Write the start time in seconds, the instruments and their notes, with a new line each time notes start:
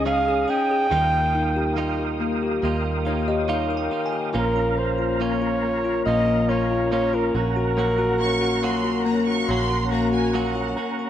Already playing: fingered electric bass C#2, tine electric piano C#4 G#4, tonewheel organ C#4 G#4 D#5 D#6
0.05 clean electric guitar C#3 G#3 C#4 D#4 G#4, tine electric piano C#4, flugelhorn F5
0.28 tine electric piano G#4
0.48 tine electric piano C#4, clean electric guitar C#4 D#4 G#4, flugelhorn G5
0.71 tine electric piano G#4
0.91 fingered electric bass D#2, clean electric guitar D#3 G3 A#3 D#4 F4, tine electric piano D#3, tonewheel organ A#4 F5 G5
1.14 tine electric piano A#3
1.35 tine electric piano D#4
1.56 tine electric piano G4
1.76 clean electric guitar D#3 G3 A#3 D#4 F4, tine electric piano A#4
1.99 tine electric piano G4
2.20 tine electric piano A#3
2.43 tine electric piano G4
2.62 fingered electric bass D#2, clean electric guitar G3 A#3 D#4 F4, tine electric piano A#3
2.85 tine electric piano F5
3.05 clean electric guitar A#3 D#4 F4, tine electric piano D#4 C#5
3.28 tine electric piano G4 D#5
3.48 clean electric guitar D#3 G3 A#3 D#4 F4, tine electric piano A#4 F5
3.71 tine electric piano G4
3.77 tine electric piano G5
3.91 tine electric piano A#3, clean electric guitar A#3 D#4 F4
4.06 tine electric piano G#5
4.13 tine electric piano G4
4.33 fingered electric bass A#1, clean electric guitar A#2 F3 A#3 C#4 F4, tine electric piano A#3, tonewheel organ C#4 F5 A#5, flugelhorn A#4
4.56 tine electric piano F4
4.77 tine electric piano A#3, flugelhorn C5
4.99 tine electric piano F4
5.20 clean electric guitar A#2 F3 A#3 C#4 F4, tine electric piano A#3, flugelhorn C#5
5.42 tine electric piano F4
5.63 tine electric piano A#3
5.85 tine electric piano F4
6.06 fingered electric bass A#1, clean electric guitar F3 A#3 C#4 F4, tine electric piano A#3, flugelhorn D#5
6.27 tine electric piano F4
6.49 tine electric piano A#3, clean electric guitar A#3 C#4 F4, flugelhorn C#5
6.71 tine electric piano F4
6.92 clean electric guitar A#2 F3 A#3 C#4 F4, tine electric piano A#3, flugelhorn C#5
7.13 tine electric piano F4, flugelhorn A#4
7.34 fingered electric bass A#1, tine electric piano A#3, clean electric guitar A#3 C#4 F#4, tonewheel organ A#4 F#5, flugelhorn A#4
7.56 tine electric piano F#4
7.77 clean electric guitar A#2 F#3 A#3 C#4 F#4, tine electric piano A#3
7.98 tine electric piano F#4
8.20 tine electric piano A#3, violin section C#6
8.41 tine electric piano F#4
8.62 clean electric guitar A#2 F#3 A#3 C#4 F#4, tine electric piano A#3, violin section C6
8.84 tine electric piano F#4
9.05 tine electric piano A#3, violin section A#5
9.27 tine electric piano F#4, violin section C#6
9.48 fingered electric bass A#1, clean electric guitar F#3 A#3 C#4 F#4, tine electric piano A#3, violin section C6
9.70 tine electric piano F#4
9.91 tine electric piano A#3, clean electric guitar A#3 C#4 F#4, violin section A#5
10.13 tine electric piano F#4, violin section G#5
10.34 clean electric guitar A#2 F#3 A#3 C#4 F#4, tine electric piano A#3, violin section F#5
10.55 tine electric piano F#4
10.77 tine electric piano A#3, clean electric guitar A#3 C#4 F#4
10.99 tine electric piano F#4